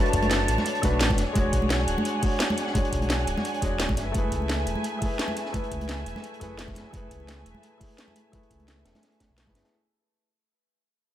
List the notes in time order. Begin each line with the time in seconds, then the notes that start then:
Already playing: A3 D4 F#4 B4 C#5 A5, downlifter
0.06 closed hi-hat
0.13 F#1, kick, closed hi-hat
0.22 closed hi-hat, high conga
0.31 snare, closed hi-hat
0.48 A1, closed hi-hat
0.58 snare, high conga
0.66 closed hi-hat
0.75 closed hi-hat
0.82 B1 A3 D4 F#4 B4, kick, snare, closed hi-hat, high conga
1.00 A1, snare, closed hi-hat
1.10 kick, snare, high conga
1.18 E1 F#5 G#5, snare, closed hi-hat
1.33 E1 G#3 D4, kick, closed hi-hat, high conga
1.37 F#4 C#5
1.53 B1, kick, closed hi-hat
1.62 high conga
1.70 snare, closed hi-hat
1.88 D1, closed hi-hat
1.98 high conga
2.05 closed hi-hat
2.20 G#3 D4, kick, closed hi-hat, open hi-hat, high conga
2.24 F#4 C#5
2.39 snare, closed hi-hat
2.50 high conga
2.57 snare, closed hi-hat
2.67 snare
2.74 G#3 D4 F#4 C#5, kick, closed hi-hat, high conga
2.85 closed hi-hat
2.93 B1, kick, closed hi-hat
3.02 closed hi-hat, high conga
3.10 snare, closed hi-hat
3.27 D1, closed hi-hat
3.37 snare, high conga
3.45 closed hi-hat
3.54 closed hi-hat
3.61 E1 G#3 D4 F#4 C#5, kick, snare, closed hi-hat, high conga
3.79 D1, snare, closed hi-hat
3.89 B1, kick, snare, high conga
3.97 F#1 A3 B4 E5, snare, closed hi-hat
4.12 F#1 A3 E4, kick, closed hi-hat, high conga
4.16 G#4 B4
4.32 C#2, kick, closed hi-hat
4.42 high conga
4.50 snare, closed hi-hat
4.67 E1, closed hi-hat
4.75 high conga
4.84 closed hi-hat
4.99 A3 E4, kick, closed hi-hat, open hi-hat, high conga
5.03 G#4 B4
5.19 snare, closed hi-hat
5.28 high conga
5.36 snare, closed hi-hat
5.46 snare
5.52 A3 E4 G#4 B4, kick, closed hi-hat, high conga
5.64 closed hi-hat
5.71 C#2, kick, closed hi-hat
5.81 closed hi-hat, high conga
5.89 snare, closed hi-hat
6.06 E1, closed hi-hat
6.16 snare, high conga
6.24 closed hi-hat
6.34 closed hi-hat
6.40 F#1 A3 E4 G#4 B4, kick, snare, closed hi-hat, high conga
6.58 E1, snare, closed hi-hat
6.68 kick, snare, high conga
6.75 F#1, snare, closed hi-hat
6.91 F#1 A3 E4, kick, closed hi-hat, high conga
6.95 G#4 B4
7.11 C#2, kick, closed hi-hat
7.20 high conga
7.29 snare, closed hi-hat
7.46 E1, closed hi-hat
7.55 high conga
7.63 closed hi-hat
7.78 A3 E4, kick, closed hi-hat, open hi-hat, high conga
7.82 G#4 B4
7.98 snare, closed hi-hat
8.08 high conga
8.16 closed hi-hat
8.32 A3 E4 G#4 B4, kick, closed hi-hat, high conga
8.43 closed hi-hat
8.50 C#2, kick, closed hi-hat
8.60 closed hi-hat, high conga
8.68 snare, closed hi-hat
8.85 E1, snare, closed hi-hat
8.95 snare, closed hi-hat, high conga
9.03 snare, closed hi-hat
9.12 closed hi-hat
9.20 kick, snare, closed hi-hat, high conga
9.30 B1
9.38 snare, closed hi-hat
9.46 A3 E4 G#4 B4, kick, snare, high conga
9.55 F#1, snare, closed hi-hat
9.65 snare, closed hi-hat